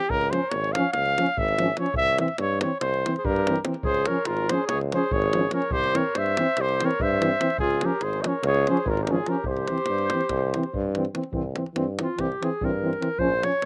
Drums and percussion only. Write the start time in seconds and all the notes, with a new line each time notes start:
0.01 davul high
0.10 davul low
0.21 davul high
0.33 davul high
0.51 davul high
0.64 davul high
0.75 davul high
0.94 davul high
1.06 davul high
1.18 davul high
1.26 davul high
1.38 davul low
1.48 davul high
1.59 davul high
1.77 davul high
1.86 davul high
1.94 davul low
2.08 davul high
2.18 davul high
2.28 davul high
2.38 davul high
2.61 davul high
2.81 davul high
2.94 davul high
3.06 davul high
3.16 davul high
3.25 davul low
3.36 davul high
3.47 davul high
3.56 davul high
3.65 davul high
3.74 davul high
3.83 davul low
3.94 davul high
4.06 davul high
4.25 davul high
4.37 davul high
4.49 davul high
4.69 davul high
4.81 davul high
4.92 davul high
5.11 davul low
5.22 davul high
5.33 davul high
5.51 davul high
5.62 davul high
5.71 davul low
5.84 davul high
5.95 davul high
6.15 davul high
6.26 davul high
6.37 davul high
6.57 davul high
6.69 davul high
6.80 davul high
6.91 davul high
7.00 davul low
7.22 davul high
7.41 davul high
7.50 davul high
7.58 davul low
7.70 davul high
7.81 davul high
8.01 davul high
8.13 davul high
8.24 davul high
8.43 davul high
8.55 davul high
8.67 davul high
8.77 davul high
8.86 davul low
8.97 davul high
9.07 davul high
9.26 davul high
9.44 davul low
9.57 davul high
9.68 davul high
9.78 davul high
9.86 davul high
9.98 davul high
10.10 davul high
10.21 davul high
10.29 davul high, davul low
10.54 davul high
10.63 davul high
10.74 davul low
10.95 davul high
11.05 davul high
11.15 davul high
11.23 davul high
11.33 davul low
11.56 davul high
11.66 davul high
11.76 davul high
11.99 davul high
12.19 davul high, davul low
12.32 davul high
12.43 davul high
12.61 davul low
12.93 davul high
13.02 davul high
13.19 davul low
13.43 davul high
13.52 davul high